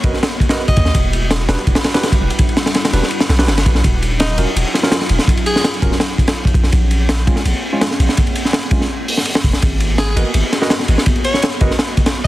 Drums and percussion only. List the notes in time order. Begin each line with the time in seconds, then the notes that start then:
0.04 kick, ride
0.14 snare
0.23 snare, ride
0.40 kick, ride
0.49 snare, ride
0.68 kick, ride
0.77 kick, ride
0.85 snare
0.95 kick, ride
1.13 ride
1.31 snare, ride
1.49 snare, ride
1.59 ride
1.67 kick, ride
1.75 snare, ride
1.84 snare, ride
1.94 snare, ride
2.03 snare, ride
2.12 kick, ride
2.30 ride
2.39 kick, ride
2.49 ride
2.57 snare, ride
2.66 snare, ride
2.74 snare, ride
2.85 snare, ride
2.93 ride
3.03 snare
3.11 ride
3.20 snare, ride
3.29 snare, ride
3.39 snare, ride
3.48 snare, ride
3.58 snare, ride
3.66 kick, ride
3.75 snare
3.84 kick, ride
4.02 ride
4.20 snare, ride
4.38 ride
4.57 ride
4.75 snare, ride
4.83 snare
4.92 snare, ride
5.01 snare
5.09 ride
5.19 snare
5.28 kick, ride
5.37 ride
5.46 ride
5.56 snare
5.64 snare, ride
5.74 ride
5.82 kick, ride
5.92 snare
6.00 snare, ride
6.18 kick, ride
6.28 snare, ride
6.45 kick, ride
6.54 kick, ride
6.64 snare
6.72 kick, ride
6.91 ride
7.09 snare, ride
7.27 kick, ride
7.36 snare
7.45 ride
7.81 snare, ride
7.91 snare
8.00 ride
8.09 snare
8.17 kick, ride
8.27 ride
8.36 ride
8.45 snare
8.53 snare, ride
8.63 ride
8.71 kick, ride
8.81 snare
9.08 open hi-hat
9.17 snare
9.25 ride
9.35 snare
9.44 kick, ride
9.53 snare
9.62 kick, ride
9.80 ride
9.98 snare, ride
10.17 ride
10.34 ride
10.53 snare, ride
10.62 snare
10.70 snare, ride
10.79 snare
10.88 ride
10.98 snare
11.06 kick, ride
11.16 ride
11.24 ride
11.34 snare
11.42 snare, ride
11.52 ride
11.61 kick, ride
11.71 snare
11.79 snare, ride
11.97 kick, ride
12.06 snare, ride